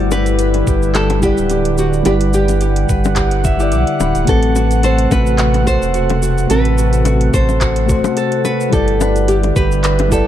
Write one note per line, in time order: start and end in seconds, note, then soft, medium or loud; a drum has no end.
0.00 0.63 G1 medium
0.00 4.25 D3 medium
0.00 1.18 G3 medium
0.00 4.24 G3 medium
0.00 1.19 E4 medium
0.00 2.04 E4 medium
0.00 0.11 G4 medium
0.00 1.75 A4 loud
0.00 1.21 D5 medium
0.00 1.20 F#5 medium
0.11 0.67 G4 medium
0.11 0.95 B4 loud
0.11 high bongo medium
0.11 shaker medium
0.26 closed hi-hat soft
0.26 shaker soft
0.39 1.22 B4 loud
0.39 closed hi-hat medium
0.39 shaker soft
0.54 closed hi-hat soft
0.54 high bongo soft
0.67 1.34 G1 medium
0.67 0.95 G4 medium
0.67 kick medium
0.67 shaker medium
0.82 shaker soft
0.95 1.50 G4 medium
0.95 1.23 A4 loud
0.95 clap medium
0.95 closed hi-hat medium
0.95 shaker soft
1.10 closed hi-hat soft
1.10 high bongo medium
1.20 2.02 G3 medium
1.20 2.02 E4 medium
1.20 1.75 G4 loud
1.20 2.06 B4 loud
1.20 2.04 F#5 medium
1.20 kick medium
1.20 shaker medium
1.25 2.04 D5 medium
1.38 2.02 D1 medium
1.38 shaker soft
1.50 1.78 G4 medium
1.50 closed hi-hat medium
1.50 high bongo soft
1.50 shaker soft
1.65 closed hi-hat soft
1.78 2.06 F#4 medium
1.78 2.33 G4 medium
1.78 shaker medium
1.93 shaker soft
2.03 2.86 G1 loud
2.03 3.40 G3 medium
2.03 3.41 E4 medium
2.03 2.14 G4 loud
2.03 2.89 B4 loud
2.03 8.69 F#5 medium
2.03 3.42 F#5 medium
2.03 closed hi-hat medium
2.03 high bongo medium
2.03 shaker soft
2.09 3.43 D5 medium
2.21 closed hi-hat soft
2.33 2.61 G4 medium
2.33 3.97 G4 medium
2.33 shaker medium
2.48 closed hi-hat soft
2.48 high bongo soft
2.48 shaker soft
2.61 3.16 G4 medium
2.61 closed hi-hat medium
2.61 shaker soft
2.76 closed hi-hat soft
2.89 3.74 G1 medium
2.89 4.94 B4 medium
2.89 kick loud
2.89 shaker medium
3.04 high bongo medium
3.04 shaker soft
3.16 3.59 G4 medium
3.16 kick medium
3.16 clap medium
3.16 closed hi-hat medium
3.16 shaker soft
3.31 closed hi-hat soft
3.44 5.17 E5 loud
3.44 kick loud
3.44 high bongo medium
3.44 shaker medium
3.57 4.24 G3 medium
3.57 4.25 E4 medium
3.57 4.34 G4 loud
3.57 4.25 F#5 medium
3.57 shaker soft
3.63 4.26 D5 medium
3.72 3.85 B1 medium
3.72 4.94 D6 medium
3.72 closed hi-hat medium
3.72 shaker soft
3.87 closed hi-hat soft
4.00 4.13 D1 loud
4.00 5.35 B5 medium
4.00 high bongo medium
4.00 shaker medium
4.15 4.26 D1 medium
4.15 closed hi-hat soft
4.15 shaker soft
4.25 5.08 A1 medium
4.25 8.69 C3 medium
4.25 5.63 A3 medium
4.25 8.69 A3 medium
4.25 5.63 F#4 medium
4.25 4.55 F#4 medium
4.25 4.84 A4 loud
4.25 5.64 B4 medium
4.25 kick loud
4.25 closed hi-hat medium
4.25 shaker soft
4.31 5.65 C4 medium
4.43 closed hi-hat soft
4.56 5.11 F#4 medium
4.56 high bongo medium
4.56 shaker medium
4.71 closed hi-hat soft
4.71 shaker soft
4.83 5.66 A4 loud
4.83 5.12 C5 loud
4.83 closed hi-hat medium
4.83 shaker soft
4.98 closed hi-hat soft
5.11 5.78 A1 medium
5.11 5.38 F#4 medium
5.11 5.67 B4 loud
5.11 kick loud
5.11 high bongo medium
5.11 shaker medium
5.27 shaker soft
5.38 5.94 F#4 medium
5.38 clap medium
5.38 closed hi-hat medium
5.38 shaker soft
5.54 closed hi-hat soft
5.54 high bongo medium
5.64 6.46 A3 medium
5.64 6.47 F#4 medium
5.64 6.49 A4 medium
5.64 6.48 A4 medium
5.64 6.50 C5 loud
5.64 kick medium
5.64 shaker medium
5.69 6.48 C5 medium
5.82 6.47 E1 medium
5.82 shaker soft
5.94 6.22 F#4 medium
5.94 closed hi-hat medium
5.94 shaker soft
6.10 closed hi-hat soft
6.10 high bongo medium
6.22 6.77 F#4 medium
6.22 shaker medium
6.38 shaker soft
6.47 7.30 A1 loud
6.47 7.85 A3 medium
6.47 7.86 F#4 medium
6.47 7.33 A4 loud
6.47 7.86 A4 medium
6.47 7.34 B4 loud
6.47 closed hi-hat medium
6.47 high bongo medium
6.47 shaker soft
6.53 7.87 C4 medium
6.65 closed hi-hat soft
6.78 7.05 F#4 medium
6.78 shaker medium
6.93 closed hi-hat soft
6.93 shaker soft
7.05 7.61 F#4 medium
7.05 closed hi-hat medium
7.05 high bongo medium
7.05 shaker soft
7.21 closed hi-hat soft
7.33 8.00 A1 medium
7.33 8.17 A4 medium
7.33 8.44 C5 loud
7.33 kick loud
7.33 shaker medium
7.49 high bongo medium
7.49 shaker soft
7.61 7.89 F#4 medium
7.61 kick medium
7.61 clap medium
7.61 closed hi-hat medium
7.61 shaker soft
7.76 closed hi-hat soft
7.87 8.68 A3 medium
7.87 8.69 F#4 medium
7.87 8.45 F#4 medium
7.87 8.70 A4 medium
7.87 kick loud
7.87 shaker medium
7.92 8.71 C5 medium
8.04 high bongo medium
8.04 shaker soft
8.17 10.27 A4 loud
8.17 closed hi-hat medium
8.17 shaker soft
8.32 closed hi-hat soft
8.45 8.78 F#4 medium
8.45 8.73 B4 medium
8.45 high bongo medium
8.45 shaker medium
8.61 shaker soft
8.70 9.52 G1 loud
8.70 10.27 D3 medium
8.70 10.07 G3 medium
8.70 10.27 G3 medium
8.70 10.08 E4 medium
8.70 10.27 E4 medium
8.70 9.28 G4 medium
8.70 9.30 A4 loud
8.70 10.09 F#5 medium
8.70 kick loud
8.70 closed hi-hat medium
8.70 shaker soft
8.75 10.10 D5 loud
8.88 closed hi-hat soft
9.01 9.84 B4 loud
9.01 high bongo medium
9.01 shaker medium
9.16 closed hi-hat soft
9.16 shaker soft
9.28 9.36 G4 medium
9.28 9.56 G4 medium
9.28 closed hi-hat medium
9.28 shaker soft
9.43 closed hi-hat soft
9.43 high bongo medium
9.56 10.22 G1 medium
9.56 10.11 G4 medium
9.56 10.12 B4 loud
9.56 kick loud
9.56 shaker medium
9.72 shaker soft
9.84 10.27 B4 loud
9.84 clap medium
9.84 closed hi-hat medium
9.84 shaker soft
9.99 closed hi-hat soft
9.99 high bongo medium
10.08 10.27 G3 medium
10.08 10.27 E4 medium
10.08 10.27 G4 medium
10.08 10.27 A4 medium
10.08 10.27 F#5 medium
10.08 kick medium
10.08 shaker medium
10.14 10.27 D5 medium